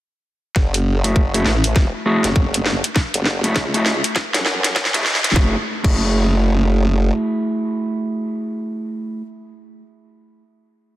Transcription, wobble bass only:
0.56 1.44 F#1 medium
1.46 1.74 A1 loud
1.76 1.91 E1 loud
2.24 2.34 F#1 loud
2.36 2.81 F#1 loud
3.14 3.54 F#1 loud
3.56 4.01 C#2 medium
4.34 4.91 F#2 loud
4.94 5.21 C#2 loud
5.24 5.34 E1 loud
5.36 5.55 F#1 loud
5.84 7.12 F#1 loud

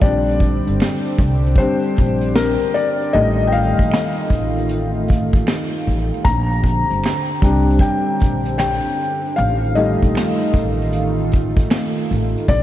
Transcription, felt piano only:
0.02 0.58 G3 medium
0.02 0.59 C4 medium
0.02 0.59 D4 medium
0.02 1.62 D5 medium
1.58 1.93 G3 medium
1.58 1.93 C4 soft
1.58 1.94 D4 medium
1.58 2.38 C5 medium
2.36 2.76 A#4 medium
2.74 2.83 D5 loud
3.13 6.21 G3 medium
3.13 6.22 A3 medium
3.13 6.22 D#4 medium
3.13 3.48 D#5 loud
3.47 3.52 G5 medium
3.52 4.65 F5 loud
6.24 7.85 A#5 loud
7.42 8.55 G3 medium
7.42 8.55 C4 soft
7.42 8.56 D4 medium
7.80 8.57 G5 loud
8.58 9.39 G5 medium
9.36 9.77 F5 medium
9.75 10.32 G3 medium
9.75 10.33 A3 medium
9.75 10.33 D#4 medium
9.75 12.05 D#5 medium
12.49 12.63 D5 loud

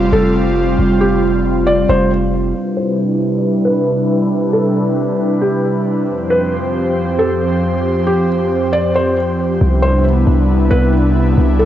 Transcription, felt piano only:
0.13 0.34 A4 medium
1.01 1.22 G4 medium
1.67 1.88 D5 medium
1.89 2.10 C5 medium
2.77 2.98 C5 medium
3.65 3.86 B4 medium
4.53 4.74 A4 medium
5.41 5.63 G4 medium
6.30 6.51 B4 medium
7.19 7.40 A4 medium
8.07 8.28 G4 medium
8.73 8.94 D5 medium
8.96 9.16 C5 medium
9.83 10.04 C5 medium
10.71 10.92 B4 medium
11.59 11.65 A4 medium

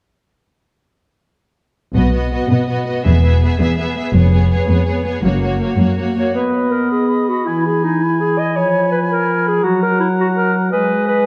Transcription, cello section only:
1.96 2.42 B2 soft
2.50 2.96 B2 soft
3.06 3.52 E2 soft
3.60 4.06 E2 soft
4.14 4.60 F2 medium
4.69 5.15 F2 soft
5.24 5.70 F#2 soft
5.78 6.26 F#2 soft

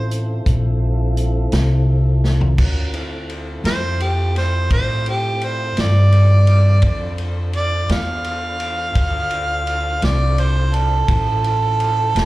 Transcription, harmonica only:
0.00 0.45 C5 loud
3.66 4.04 C5 loud
4.03 4.36 G4 medium
4.38 4.71 C5 medium
4.73 5.06 C5 medium
5.09 5.46 G4 medium
5.44 5.82 C5 medium
5.81 7.16 D5 loud
7.57 7.90 D5 loud
7.92 10.07 F5 medium
10.05 10.42 D5 medium
10.40 10.76 C5 medium
10.75 11.08 A4 medium
11.11 12.25 A4 loud

